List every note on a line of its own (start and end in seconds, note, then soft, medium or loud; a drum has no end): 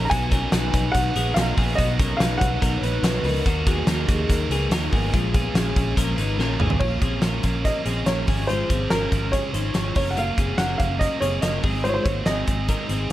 0.00 0.11 C#4 soft
0.00 0.11 C#4 medium
0.00 0.10 D#4 medium
0.00 0.11 A#4 medium
0.05 0.12 A#5 medium
0.10 0.45 B1 loud
0.10 0.32 B2 medium
0.10 0.32 D#3 medium
0.10 0.32 B3 medium
0.10 0.31 D#4 medium
0.10 0.32 F#4 loud
0.10 0.29 F#4 medium
0.10 0.97 G#5 medium
0.10 kick medium
0.10 closed hi-hat medium
0.30 0.52 B3 soft
0.30 0.53 C#4 medium
0.30 0.52 D#4 medium
0.30 0.52 F#4 medium
0.30 0.53 A#4 medium
0.30 kick medium
0.30 closed hi-hat medium
0.51 0.70 B1 loud
0.51 0.73 D#3 medium
0.51 0.74 B3 medium
0.51 0.72 D#4 medium
0.51 1.13 D#4 soft
0.51 0.70 F#4 medium
0.51 1.12 B4 medium
0.51 snare loud
0.51 closed hi-hat medium
0.72 0.91 B1 loud
0.72 0.93 B3 soft
0.72 0.93 D#4 soft
0.72 0.94 F#4 medium
0.72 kick medium
0.72 closed hi-hat medium
0.92 1.12 B1 loud
0.92 1.15 B2 medium
0.92 1.15 D#3 medium
0.92 1.16 B3 medium
0.92 1.14 D#4 medium
0.92 1.14 F#4 medium
0.92 1.37 F#5 loud
0.92 kick medium
0.92 closed hi-hat medium
1.15 1.33 A#1 medium
1.15 1.37 B3 medium
1.15 1.35 B3 soft
1.15 1.36 D#4 medium
1.15 1.36 F#4 medium
1.15 1.36 G#4 medium
1.15 closed hi-hat medium
1.34 1.54 B1 loud
1.34 1.57 D#3 medium
1.34 1.58 B3 medium
1.34 1.56 D#4 medium
1.34 1.58 D#4 medium
1.34 1.55 F#4 medium
1.34 1.57 A#4 medium
1.34 1.79 F5 medium
1.34 snare loud
1.34 closed hi-hat medium
1.56 1.74 A#1 medium
1.56 1.77 B3 medium
1.56 1.77 B3 soft
1.56 1.78 D#4 medium
1.56 1.78 F#4 medium
1.56 1.78 G#4 medium
1.56 kick medium
1.56 open hi-hat medium
1.75 2.13 B1 loud
1.75 1.99 B2 medium
1.75 1.99 D#3 medium
1.75 1.99 B3 medium
1.75 2.00 B3 medium
1.75 1.98 D#4 medium
1.75 1.99 F#4 loud
1.75 1.97 F#4 medium
1.75 2.16 D#5 medium
1.75 kick loud
1.75 closed hi-hat medium
1.98 2.17 B3 soft
1.98 2.21 C#4 medium
1.98 2.18 D#4 medium
1.98 2.19 F#4 medium
1.98 2.20 A#4 medium
1.98 kick loud
1.98 closed hi-hat medium
2.17 2.37 B1 loud
2.17 2.40 D#3 medium
2.17 2.40 B3 medium
2.17 2.40 D#4 medium
2.17 2.38 F#4 medium
2.17 2.60 B4 medium
2.17 2.38 F5 medium
2.17 snare loud
2.21 2.60 D#4 medium
2.21 closed hi-hat loud
2.38 2.58 B1 loud
2.38 2.60 D#4 soft
2.38 2.60 F#4 medium
2.38 3.19 F#5 loud
2.38 kick medium
2.38 closed hi-hat medium
2.42 2.60 B3 soft
2.59 2.79 B1 loud
2.59 2.82 B2 medium
2.59 2.82 D#3 medium
2.59 2.83 B3 medium
2.59 2.81 D#4 medium
2.59 2.83 D#4 medium
2.59 2.80 F#4 medium
2.59 2.83 A#4 medium
2.59 kick medium
2.59 closed hi-hat medium
2.77 2.83 C#5 medium
2.81 2.99 A#1 medium
2.81 3.02 B3 soft
2.81 3.03 D#4 soft
2.81 3.05 D#4 medium
2.81 3.03 F#4 medium
2.81 3.04 B4 medium
2.81 3.27 B4 loud
2.81 closed hi-hat medium
3.02 3.21 B1 loud
3.02 3.24 D#3 medium
3.02 3.25 B3 medium
3.02 3.24 D#4 medium
3.02 3.26 F#4 medium
3.02 3.22 F#4 medium
3.02 3.25 C#5 medium
3.02 snare loud
3.02 closed hi-hat medium
3.23 3.41 C#2 medium
3.23 3.46 B3 medium
3.23 3.46 D#4 medium
3.23 3.45 F#4 medium
3.23 3.64 A#4 loud
3.23 3.46 B4 medium
3.23 open hi-hat medium
3.45 3.80 D#2 loud
3.45 3.66 D#3 loud
3.45 3.67 A#3 loud
3.45 3.68 A#3 medium
3.45 3.67 D#4 loud
3.45 3.67 F#4 loud
3.45 3.65 F#4 loud
3.45 kick medium
3.45 closed hi-hat medium
3.66 3.87 A#3 medium
3.66 3.88 B3 medium
3.66 3.88 D#4 medium
3.66 3.87 F#4 medium
3.66 4.04 F#4 medium
3.66 3.88 G#4 medium
3.66 kick loud
3.66 closed hi-hat medium
3.87 4.05 D#2 loud
3.87 4.08 D#3 medium
3.87 4.09 A#3 medium
3.87 4.08 D#4 medium
3.87 4.48 D#4 medium
3.87 4.07 F#4 loud
3.87 4.47 A#4 medium
3.87 snare loud
3.87 closed hi-hat medium
4.04 4.29 F#4 medium
4.04 4.09 G4 medium
4.08 4.26 D#2 loud
4.08 4.28 A#3 soft
4.08 4.29 D#4 soft
4.08 4.31 G#4 medium
4.08 kick loud
4.08 closed hi-hat medium
4.29 4.46 D#2 loud
4.29 4.50 D#3 medium
4.29 4.51 A#3 medium
4.29 4.50 D#4 medium
4.29 4.49 F#4 medium
4.29 5.10 A#4 medium
4.29 kick medium
4.29 closed hi-hat medium
4.49 4.67 C#2 medium
4.49 4.71 A#3 medium
4.49 4.72 B3 medium
4.49 4.71 D#4 medium
4.49 4.71 F#4 medium
4.49 4.72 G#4 medium
4.49 closed hi-hat medium
4.70 4.88 D#2 loud
4.70 4.92 D#3 medium
4.70 4.92 A#3 medium
4.70 4.91 D#4 medium
4.70 4.93 D#4 medium
4.70 4.90 F#4 medium
4.70 4.92 A#4 medium
4.70 snare loud
4.70 closed hi-hat loud
4.91 5.10 G#1 medium
4.91 5.14 A#3 medium
4.91 5.14 B3 medium
4.91 5.13 D#4 medium
4.91 5.12 F#4 medium
4.91 5.13 G#4 medium
4.91 kick medium
4.91 open hi-hat medium
5.13 5.48 A#1 loud
5.13 5.34 A#2 medium
5.13 5.34 F3 medium
5.13 5.35 G#3 medium
5.13 5.34 C#4 loud
5.13 5.34 F4 loud
5.13 5.32 F4 loud
5.13 kick medium
5.13 closed hi-hat medium
5.33 5.54 G#3 soft
5.33 5.55 B3 medium
5.33 5.55 C#4 medium
5.33 5.55 F4 medium
5.33 5.55 G#4 medium
5.33 kick loud
5.33 closed hi-hat medium
5.54 5.72 A#1 loud
5.54 5.76 F3 medium
5.54 5.76 G#3 medium
5.54 5.75 C#4 medium
5.54 5.95 C#4 medium
5.54 5.74 F4 loud
5.54 5.95 G#4 medium
5.54 snare loud
5.54 closed hi-hat loud
5.75 5.93 A#1 loud
5.75 5.95 G#3 soft
5.75 5.96 C#4 medium
5.75 5.96 F4 medium
5.75 kick loud
5.75 closed hi-hat medium
5.96 6.14 A#1 loud
5.96 6.17 A#2 medium
5.96 6.18 F3 medium
5.96 6.18 G#3 medium
5.96 6.17 C#4 medium
5.96 6.19 C#4 medium
5.96 6.15 F4 loud
5.96 6.18 A#4 medium
5.96 kick medium
5.96 closed hi-hat medium
6.16 6.35 G#1 medium
6.16 6.38 G#3 soft
6.16 6.38 C#4 medium
6.16 6.39 D#4 medium
6.16 6.38 F4 medium
6.16 6.39 B4 medium
6.16 closed hi-hat medium
6.38 6.55 A#1 medium
6.38 6.59 F3 medium
6.38 6.60 G#3 medium
6.38 6.59 C#4 medium
6.38 6.61 C#4 medium
6.38 6.58 F4 medium
6.38 6.60 A#4 medium
6.38 snare medium
6.59 6.77 G#1 loud
6.59 6.80 G#3 soft
6.59 6.81 B3 medium
6.59 6.80 C#4 medium
6.59 6.80 F4 medium
6.59 6.81 G#4 medium
6.59 mid tom medium
6.70 floor tom medium
6.80 6.98 A#1 loud
6.80 7.01 A#2 medium
6.80 7.02 F3 medium
6.80 7.02 A#3 medium
6.80 7.01 C#4 medium
6.80 7.02 F4 loud
6.80 6.99 F4 medium
6.80 7.67 C#5 medium
6.80 kick medium
6.80 crash medium
7.01 7.19 A#1 medium
7.01 7.21 A#3 soft
7.01 7.23 C4 medium
7.01 7.22 C#4 soft
7.01 7.22 F4 soft
7.01 7.22 G#4 medium
7.01 kick loud
7.01 closed hi-hat medium
7.21 7.40 A#1 medium
7.21 7.43 F3 medium
7.21 7.44 A#3 medium
7.21 7.82 C#4 soft
7.21 7.44 C#4 medium
7.21 7.42 F4 medium
7.21 7.82 A#4 medium
7.21 snare loud
7.21 closed hi-hat medium
7.43 7.69 A#1 medium
7.43 7.65 A#3 soft
7.43 7.65 C#4 soft
7.43 7.64 F4 medium
7.43 kick medium
7.43 closed hi-hat medium
7.65 7.86 A#2 medium
7.65 7.86 F3 medium
7.65 7.87 A#3 medium
7.65 7.86 C#4 medium
7.65 7.84 F4 medium
7.65 8.04 D#5 medium
7.65 kick medium
7.65 closed hi-hat medium
7.85 8.03 A#1 medium
7.85 8.06 A#3 soft
7.85 8.07 C4 medium
7.85 8.07 C#4 soft
7.85 8.06 F4 medium
7.85 8.07 G#4 medium
7.85 closed hi-hat medium
8.06 8.24 A#1 medium
8.06 8.27 F3 medium
8.06 8.28 A#3 medium
8.06 8.28 C#4 medium
8.06 8.27 F4 medium
8.06 8.28 A#4 medium
8.06 8.50 C#5 medium
8.06 snare loud
8.06 closed hi-hat medium
8.27 8.62 G#1 medium
8.27 8.49 G#3 soft
8.27 8.49 C#4 soft
8.27 8.50 C#4 soft
8.27 8.49 F4 medium
8.27 8.49 G#4 medium
8.27 kick loud
8.27 open hi-hat medium
8.32 8.49 F3 soft
8.47 8.70 G#2 medium
8.47 8.70 C#3 medium
8.47 8.70 F3 medium
8.47 8.70 G#3 medium
8.47 8.71 G#3 medium
8.47 8.70 F4 medium
8.47 8.91 C5 medium
8.47 closed hi-hat medium
8.52 8.70 C#4 medium
8.52 8.69 F4 medium
8.70 8.87 G#1 medium
8.70 8.91 F3 soft
8.70 8.92 G#3 medium
8.70 8.92 C4 medium
8.70 8.92 C#4 medium
8.70 8.91 F4 medium
8.70 8.91 G#4 medium
8.70 kick medium
8.70 closed hi-hat medium
8.90 9.08 G#1 medium
8.90 9.12 F3 medium
8.90 9.13 G#3 medium
8.90 9.31 C#4 medium
8.90 9.12 C#4 medium
8.90 9.34 A#4 medium
8.90 9.31 A#4 medium
8.90 snare loud
8.90 closed hi-hat medium
8.95 9.10 F4 medium
9.11 9.37 G#1 medium
9.11 9.32 F3 soft
9.11 9.33 G#3 soft
9.11 9.33 C#4 soft
9.11 9.33 F4 soft
9.11 kick medium
9.11 closed hi-hat medium
9.32 9.54 G#2 medium
9.32 9.54 C#3 medium
9.32 9.54 F3 medium
9.32 9.54 G#3 medium
9.32 9.54 C#4 medium
9.32 9.53 C#4 medium
9.32 9.53 F4 medium
9.32 9.53 G#4 medium
9.32 9.95 C#5 medium
9.32 kick medium
9.32 closed hi-hat medium
9.53 9.71 G#1 medium
9.53 9.72 F3 soft
9.53 9.74 G#3 soft
9.53 9.74 C#4 medium
9.53 9.75 D#4 soft
9.53 9.75 F4 soft
9.53 9.75 C5 medium
9.53 closed hi-hat medium
9.73 9.92 G#1 medium
9.73 9.95 F3 medium
9.73 9.96 G#3 medium
9.73 9.95 C#4 medium
9.73 9.96 F4 medium
9.73 9.94 F4 medium
9.73 9.96 C#5 medium
9.73 snare medium
9.73 closed hi-hat medium
9.95 10.30 F#1 medium
9.95 10.15 A#3 soft
9.95 10.16 C#4 soft
9.95 10.18 C#4 medium
9.95 10.16 F4 soft
9.95 10.17 A#4 medium
9.95 10.10 C#5 medium
9.95 kick medium
9.95 open hi-hat medium
10.11 10.17 F#5 medium
10.16 10.37 F#3 medium
10.16 10.38 A#3 medium
10.16 10.38 C#4 medium
10.16 10.38 F4 loud
10.16 10.36 F4 medium
10.16 10.61 F5 medium
10.16 closed hi-hat medium
10.37 10.55 F#1 medium
10.37 10.58 A#3 soft
10.37 10.59 C4 medium
10.37 10.59 C#4 soft
10.37 10.59 F4 medium
10.37 10.59 G#4 medium
10.37 kick medium
10.37 closed hi-hat medium
10.58 10.75 F#1 loud
10.58 10.79 F#3 medium
10.58 10.80 A#3 medium
10.58 11.19 C#4 soft
10.58 10.80 C#4 medium
10.58 10.78 F4 medium
10.58 11.18 A#4 medium
10.58 10.80 F#5 loud
10.58 snare loud
10.58 closed hi-hat medium
10.78 11.05 F#1 loud
10.78 11.01 C#4 soft
10.78 11.01 F4 soft
10.78 10.98 F5 medium
10.78 kick medium
10.78 closed hi-hat medium
10.83 11.00 A#3 soft
10.99 11.22 F#3 medium
10.99 11.22 A#3 medium
10.99 11.23 C#4 medium
10.99 11.21 F4 medium
10.99 11.22 D#5 medium
10.99 kick medium
10.99 closed hi-hat medium
11.21 11.39 F#1 medium
11.21 11.43 C4 medium
11.21 11.43 C#4 soft
11.21 11.43 F4 soft
11.21 11.42 G#4 medium
11.21 11.43 C#5 medium
11.21 closed hi-hat medium
11.25 11.43 A#3 soft
11.42 11.60 F#1 medium
11.42 11.64 F#3 medium
11.42 11.64 A#3 medium
11.42 11.64 C#4 medium
11.42 11.65 C#4 medium
11.42 11.64 F4 medium
11.42 11.64 A#4 medium
11.42 11.86 D#5 medium
11.42 snare medium
11.42 closed hi-hat medium
11.63 11.98 G#1 medium
11.63 11.85 C4 medium
11.63 11.85 C4 soft
11.63 11.85 D#4 soft
11.63 11.85 G#4 medium
11.63 11.85 G#4 soft
11.63 kick medium
11.63 open hi-hat medium
11.67 11.84 G#3 soft
11.84 12.06 G#2 medium
11.84 12.06 D#3 medium
11.84 12.06 G#3 medium
11.84 12.06 C4 medium
11.84 12.05 D#4 medium
11.84 12.06 F4 medium
11.84 12.04 G#4 medium
11.84 11.90 C5 medium
11.84 closed hi-hat medium
11.89 11.95 C#5 medium
11.94 12.06 C5 medium
12.04 12.23 G#1 medium
12.04 12.27 A#3 medium
12.04 12.25 C4 soft
12.04 12.26 D#4 medium
12.04 12.27 F#4 medium
12.04 12.26 G#4 soft
12.04 12.26 C#5 medium
12.04 kick loud
12.04 closed hi-hat medium
12.08 12.24 G#3 soft
12.25 12.43 G#1 medium
12.25 12.47 G#3 medium
12.25 12.48 C4 medium
12.25 12.67 C4 medium
12.25 12.47 D#4 medium
12.25 12.67 G#4 medium
12.25 12.45 G#4 medium
12.25 13.06 D#5 medium
12.25 snare medium
12.25 closed hi-hat medium
12.47 12.73 G#1 medium
12.47 12.67 G#3 soft
12.47 12.68 C4 soft
12.47 12.69 D#4 soft
12.47 12.68 G#4 soft
12.47 kick medium
12.47 closed hi-hat medium
12.68 12.90 G#2 medium
12.68 12.90 D#3 medium
12.68 12.90 G#3 medium
12.68 12.90 C4 medium
12.68 12.90 D#4 medium
12.68 12.89 D#4 medium
12.68 12.88 G#4 medium
12.68 12.89 A#4 medium
12.68 kick medium
12.68 closed hi-hat medium
12.89 13.07 G#1 medium
12.89 13.09 G#3 soft
12.89 13.11 C4 medium
12.89 13.10 C4 soft
12.89 13.11 D#4 medium
12.89 13.11 G#4 medium
12.89 closed hi-hat medium